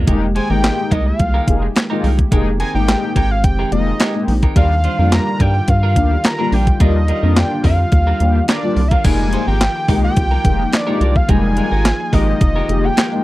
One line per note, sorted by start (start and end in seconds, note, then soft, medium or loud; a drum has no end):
0.00 4.52 G#3 medium
0.00 2.28 A#3 medium
0.07 0.39 F1 loud
0.07 9.01 D#3 medium
0.07 0.29 G#3 medium
0.07 0.26 G#3 loud
0.07 0.27 A#3 medium
0.07 0.21 D#4 medium
0.07 0.27 D#4 medium
0.07 4.52 G4 medium
0.07 0.21 G4 medium
0.07 0.27 G4 loud
0.07 0.21 A#4 medium
0.07 kick loud
0.07 closed hi-hat loud
0.22 muted clean electric guitar stroke soft
0.35 0.49 G#3 medium
0.35 0.49 D#4 medium
0.35 0.49 G4 medium
0.35 0.49 C5 medium
0.35 0.52 G#5 loud
0.35 closed hi-hat medium
0.50 0.71 G#1 medium
0.50 0.92 G#3 medium
0.50 0.62 G#3 medium
0.50 0.92 A#3 medium
0.50 0.62 D#4 medium
0.50 0.93 D#4 medium
0.50 0.63 G4 medium
0.50 0.93 G4 medium
0.50 0.63 A#4 medium
0.50 0.93 G5 loud
0.63 muted clean electric guitar stroke soft
0.63 snare loud
0.63 clap medium
0.63 closed hi-hat medium
0.78 muted clean electric guitar stroke soft
0.91 1.12 C2 medium
0.91 1.13 G#3 medium
0.91 1.06 D#4 medium
0.91 1.05 G4 medium
0.91 1.05 A#4 medium
0.91 1.08 D#5 medium
0.91 kick medium
0.91 closed hi-hat medium
1.06 1.62 F5 medium
1.06 muted clean electric guitar stroke soft
1.19 1.40 C2 medium
1.19 muted clean electric guitar stroke soft
1.19 kick medium
1.19 closed hi-hat medium
1.34 1.46 G#3 medium
1.34 1.47 D#4 medium
1.34 1.47 G4 medium
1.34 1.47 A#4 medium
1.47 1.68 F1 medium
1.47 1.66 G#3 medium
1.47 1.67 A#3 medium
1.47 1.67 D#4 medium
1.47 1.67 G#4 medium
1.47 muted clean electric guitar stroke soft
1.47 kick medium
1.47 closed hi-hat medium
1.62 muted clean electric guitar stroke medium
1.76 muted clean electric guitar stroke soft
1.76 snare loud
1.76 clap loud
1.76 closed hi-hat medium
1.90 2.08 G#3 medium
1.90 2.02 G#3 medium
1.90 2.08 A#3 medium
1.90 2.02 D#4 medium
1.90 2.08 D#4 medium
1.90 2.08 F4 loud
1.90 2.03 G4 medium
1.90 2.03 A#4 medium
2.03 2.25 C2 medium
2.03 2.21 G#3 medium
2.03 2.18 D#4 medium
2.03 2.17 G4 medium
2.03 2.17 A#4 medium
2.03 open hi-hat medium
2.18 muted clean electric guitar stroke soft
2.18 kick medium
2.18 closed hi-hat soft
2.31 2.64 F1 loud
2.31 2.50 G#3 medium
2.31 2.54 G#3 medium
2.31 2.50 A#3 medium
2.31 4.54 C4 medium
2.31 2.51 D#4 medium
2.31 2.46 D#4 medium
2.31 2.46 G4 medium
2.31 2.51 G#4 loud
2.31 2.46 A#4 medium
2.31 kick loud
2.31 closed hi-hat loud
2.47 muted clean electric guitar stroke soft
2.60 2.75 G#3 medium
2.60 2.74 D#4 medium
2.60 2.74 G4 medium
2.60 2.73 A#4 medium
2.60 2.74 G#5 loud
2.60 closed hi-hat medium
2.74 2.95 G#1 medium
2.74 3.16 G#3 medium
2.74 2.87 G#3 soft
2.74 3.16 A#3 medium
2.74 3.17 D#4 medium
2.74 2.87 D#4 soft
2.74 3.17 G4 medium
2.74 2.87 G4 medium
2.74 2.88 A#4 medium
2.74 3.13 G5 loud
2.88 muted clean electric guitar stroke soft
2.88 snare loud
2.88 clap medium
2.88 closed hi-hat medium
3.03 muted clean electric guitar stroke soft
3.16 3.46 G#1 medium
3.16 3.38 G#3 medium
3.16 3.30 D#4 medium
3.16 3.30 G4 medium
3.16 3.30 A#4 medium
3.16 3.33 G5 loud
3.16 kick medium
3.16 closed hi-hat medium
3.31 3.45 F5 loud
3.31 muted clean electric guitar stroke soft
3.44 3.65 F1 loud
3.44 3.72 G5 loud
3.44 muted clean electric guitar stroke soft
3.44 kick loud
3.44 closed hi-hat medium
3.59 3.71 G#3 medium
3.59 3.71 D#4 medium
3.59 3.71 G4 medium
3.59 3.71 A#4 medium
3.71 3.93 F1 medium
3.71 3.91 G#3 medium
3.71 3.91 A#3 medium
3.71 3.91 D#4 medium
3.71 3.91 F4 medium
3.71 4.24 D#5 medium
3.71 muted clean electric guitar stroke soft
3.71 closed hi-hat medium
3.87 muted clean electric guitar stroke soft
4.00 4.22 G#3 medium
4.00 4.15 D#4 loud
4.00 4.14 G4 medium
4.00 4.14 A#4 medium
4.00 snare loud
4.00 clap medium
4.00 closed hi-hat loud
4.14 4.32 G#3 medium
4.14 4.33 A#3 medium
4.14 4.33 D#4 medium
4.14 4.33 G4 medium
4.14 muted clean electric guitar stroke soft
4.28 4.49 A#1 medium
4.28 muted clean electric guitar stroke soft
4.28 open hi-hat medium
4.43 4.55 G#3 medium
4.43 4.56 D#4 medium
4.43 4.56 G4 medium
4.43 4.56 A#4 medium
4.43 kick medium
4.43 closed hi-hat medium
4.56 4.88 D#2 loud
4.56 9.01 D3 medium
4.56 4.75 G3 medium
4.56 4.78 G3 medium
4.56 9.01 G3 medium
4.56 4.75 A#3 medium
4.56 4.75 D4 medium
4.56 4.71 D4 medium
4.56 9.01 F4 medium
4.56 4.75 F4 medium
4.56 4.70 F4 medium
4.56 4.70 A#4 medium
4.56 5.15 F5 loud
4.56 kick loud
4.56 closed hi-hat medium
4.71 muted clean electric guitar stroke soft
4.84 4.98 G3 medium
4.84 4.98 D4 medium
4.84 4.98 F4 medium
4.84 4.98 C5 medium
4.84 closed hi-hat medium
4.99 5.20 F2 medium
4.99 5.41 G3 medium
4.99 5.11 G3 medium
4.99 5.41 A#3 medium
4.99 5.41 D4 medium
4.99 5.11 D4 medium
4.99 5.11 F4 medium
4.99 5.41 F4 medium
4.99 5.11 A#4 medium
5.12 5.43 A#5 loud
5.12 muted clean electric guitar stroke soft
5.12 snare loud
5.12 clap medium
5.12 closed hi-hat medium
5.27 muted clean electric guitar stroke soft
5.40 5.61 G2 medium
5.40 5.62 G3 medium
5.40 5.55 D4 medium
5.40 5.54 F4 medium
5.40 5.54 A#4 medium
5.40 5.71 G5 loud
5.40 kick medium
5.40 closed hi-hat medium
5.55 muted clean electric guitar stroke soft
5.68 5.98 G2 loud
5.68 6.27 F5 loud
5.68 muted clean electric guitar stroke soft
5.68 kick medium
5.68 closed hi-hat medium
5.83 5.95 G3 medium
5.83 5.95 D4 medium
5.83 5.96 F4 medium
5.83 5.96 A#4 medium
5.96 6.17 D2 medium
5.96 6.15 G3 medium
5.96 6.15 A#3 medium
5.96 6.15 D4 medium
5.96 6.15 G4 medium
5.96 muted clean electric guitar stroke soft
5.96 kick medium
5.96 closed hi-hat medium
6.11 muted clean electric guitar stroke soft
6.24 6.55 A#5 loud
6.24 muted clean electric guitar stroke soft
6.24 snare loud
6.24 clap loud
6.24 closed hi-hat medium
6.39 6.57 G3 medium
6.39 6.51 G3 medium
6.39 6.57 A#3 medium
6.39 6.57 D4 medium
6.39 6.51 D4 medium
6.39 6.51 F4 medium
6.39 6.57 F4 medium
6.39 6.52 A#4 medium
6.52 6.73 A#1 medium
6.52 6.70 G3 medium
6.52 6.67 D4 medium
6.52 6.66 F4 medium
6.52 6.66 A#4 medium
6.52 6.81 G5 medium
6.52 open hi-hat medium
6.67 muted clean electric guitar stroke soft
6.67 kick medium
6.67 closed hi-hat soft
6.80 7.12 D#2 loud
6.80 6.99 G3 medium
6.80 7.02 G3 medium
6.80 6.99 A#3 medium
6.80 6.99 D4 medium
6.80 6.94 D4 medium
6.80 6.99 F4 medium
6.80 6.94 F4 loud
6.80 6.94 A#4 loud
6.80 7.39 D#5 medium
6.80 kick loud
6.80 closed hi-hat loud
6.95 muted clean electric guitar stroke soft
7.08 7.23 G3 medium
7.08 7.22 D4 medium
7.08 7.22 F4 medium
7.08 7.22 A#4 medium
7.08 closed hi-hat medium
7.23 7.44 F2 loud
7.23 7.65 G3 medium
7.23 7.35 G3 medium
7.23 7.65 A#3 medium
7.23 7.65 D4 medium
7.23 7.35 D4 soft
7.23 7.36 F4 medium
7.23 7.65 F4 medium
7.23 7.36 A#4 medium
7.36 7.65 G5 loud
7.36 muted clean electric guitar stroke soft
7.36 snare loud
7.36 clap medium
7.36 closed hi-hat medium
7.51 muted clean electric guitar stroke soft
7.64 7.85 F2 medium
7.64 7.86 G3 medium
7.64 7.79 D4 medium
7.64 7.78 F4 medium
7.64 7.78 A#4 medium
7.64 8.45 F5 loud
7.64 kick medium
7.64 open hi-hat medium
7.79 muted clean electric guitar stroke soft
7.92 8.13 D#2 loud
7.92 muted clean electric guitar stroke soft
7.92 kick loud
7.92 closed hi-hat medium
8.07 8.19 G3 medium
8.07 8.20 D4 medium
8.07 8.20 F4 medium
8.07 8.20 A#4 medium
8.20 8.41 D#2 medium
8.20 8.39 G3 medium
8.20 8.39 A#3 medium
8.20 8.39 D4 medium
8.20 8.40 G4 medium
8.20 muted clean electric guitar stroke soft
8.20 closed hi-hat medium
8.35 muted clean electric guitar stroke soft
8.48 8.70 G3 medium
8.48 8.63 D4 medium
8.48 8.63 F4 medium
8.48 8.62 A#4 loud
8.48 8.90 D5 medium
8.48 snare loud
8.48 clap medium
8.48 closed hi-hat medium
8.63 8.81 G3 medium
8.63 8.81 A#3 medium
8.63 8.81 D4 medium
8.63 8.81 F4 medium
8.63 muted clean electric guitar stroke soft
8.76 8.97 C2 medium
8.76 muted clean electric guitar stroke soft
8.76 open hi-hat medium
8.88 9.04 D4 soft
8.88 9.04 F4 medium
8.88 9.04 A#4 medium
8.88 8.93 E5 medium
8.88 9.06 F5 loud
8.88 kick medium
8.88 closed hi-hat medium
8.92 9.04 G3 soft
9.04 9.37 F1 loud
9.04 13.24 D#3 medium
9.04 13.24 F3 medium
9.04 9.42 G3 medium
9.04 9.42 G#3 medium
9.04 9.26 G#3 loud
9.04 9.42 A#3 medium
9.04 13.24 A#3 medium
9.04 9.42 D#4 medium
9.04 9.19 D#4 medium
9.04 13.24 F4 medium
9.04 9.19 G4 loud
9.04 9.18 A#4 loud
9.04 9.47 G#5 loud
9.04 kick loud
9.04 closed hi-hat loud
9.04 crash loud
9.20 muted clean electric guitar stroke soft
9.33 9.47 G#3 medium
9.33 9.47 D#4 medium
9.33 9.47 G4 medium
9.33 9.47 C5 medium
9.33 closed hi-hat medium
9.47 9.68 G#1 medium
9.47 9.60 G#3 soft
9.47 9.60 D#4 medium
9.47 9.60 G4 medium
9.47 9.60 A#4 medium
9.47 10.00 G5 loud
9.61 muted clean electric guitar stroke soft
9.61 snare loud
9.61 clap medium
9.61 closed hi-hat medium
9.76 muted clean electric guitar stroke soft
9.88 10.09 C2 medium
9.88 10.13 G#3 medium
9.88 10.10 G#3 medium
9.88 10.13 A#3 medium
9.88 10.13 D#4 medium
9.88 10.03 D#4 medium
9.88 10.14 G4 medium
9.88 10.03 G4 medium
9.88 10.02 A#4 medium
9.88 kick medium
9.88 open hi-hat medium
10.03 10.75 G5 loud
10.03 muted clean electric guitar stroke medium
10.17 10.38 C2 loud
10.17 muted clean electric guitar stroke soft
10.17 kick loud
10.17 closed hi-hat medium
10.31 10.43 G#3 medium
10.31 10.43 D#4 medium
10.31 10.44 G4 medium
10.31 10.44 A#4 medium
10.44 10.66 F1 medium
10.44 10.63 G#3 medium
10.44 10.64 A#3 medium
10.44 10.64 D#4 medium
10.44 10.64 G4 medium
10.44 muted clean electric guitar stroke soft
10.44 kick loud
10.44 closed hi-hat medium
10.59 muted clean electric guitar stroke soft
10.72 11.18 D5 loud
10.72 muted clean electric guitar stroke soft
10.72 snare loud
10.72 clap loud
10.72 closed hi-hat loud
10.87 10.99 G#3 medium
10.87 10.99 A#3 medium
10.87 11.00 D#4 medium
10.87 10.99 D#4 medium
10.87 11.00 G4 medium
10.87 10.99 G4 medium
10.87 11.00 A#4 medium
11.00 11.22 C2 medium
11.00 11.18 G#3 medium
11.00 11.15 D#4 medium
11.00 11.15 G4 medium
11.00 11.14 A#4 medium
11.00 closed hi-hat medium
11.15 11.21 D#4 medium
11.15 11.22 G4 medium
11.15 11.31 F5 medium
11.15 muted clean electric guitar stroke soft
11.15 kick medium
11.28 11.61 F1 loud
11.28 11.66 G3 loud
11.28 11.50 G#3 medium
11.28 11.66 G#3 medium
11.28 11.66 A#3 medium
11.28 11.43 D#4 medium
11.28 11.66 D#4 medium
11.28 11.43 G4 medium
11.28 11.43 A#4 medium
11.28 12.15 G#5 loud
11.28 kick loud
11.28 closed hi-hat loud
11.44 muted clean electric guitar stroke medium
11.57 11.72 G#3 medium
11.57 11.71 D#4 medium
11.57 11.71 G4 medium
11.57 11.70 A#4 medium
11.57 closed hi-hat medium
11.72 11.93 G#1 medium
11.72 11.84 G#3 medium
11.72 11.84 D#4 medium
11.72 11.84 G4 medium
11.72 11.84 A#4 medium
11.85 muted clean electric guitar stroke soft
11.85 snare loud
11.85 clap medium
11.85 closed hi-hat medium
12.00 muted clean electric guitar stroke soft
12.13 12.34 G#1 medium
12.13 12.37 G#3 medium
12.13 12.35 G#3 medium
12.13 12.38 A#3 medium
12.13 12.38 D#4 medium
12.13 12.27 D#4 medium
12.13 12.38 G4 medium
12.13 12.27 G4 medium
12.13 12.27 A#4 medium
12.13 12.86 D#5 loud
12.13 kick medium
12.13 open hi-hat medium
12.28 muted clean electric guitar stroke medium
12.41 12.62 F1 loud
12.41 muted clean electric guitar stroke soft
12.41 kick loud
12.41 closed hi-hat medium
12.56 12.68 G#3 medium
12.56 12.68 D#4 medium
12.56 12.68 G4 medium
12.56 12.68 A#4 medium
12.69 12.90 F1 loud
12.69 12.88 G#3 medium
12.69 12.88 A#3 medium
12.69 12.88 D#4 medium
12.69 12.88 G4 medium
12.69 muted clean electric guitar stroke soft
12.69 closed hi-hat medium
12.84 13.24 G5 loud
12.84 muted clean electric guitar stroke medium
12.97 13.19 G#3 medium
12.97 13.12 D#4 medium
12.97 13.11 G4 loud
12.97 13.11 A#4 loud
12.97 snare loud
12.97 clap loud
12.97 closed hi-hat loud
13.11 13.23 G#3 medium
13.11 13.23 A#3 medium
13.11 13.23 D#4 medium
13.11 13.24 G4 medium
13.11 muted clean electric guitar stroke medium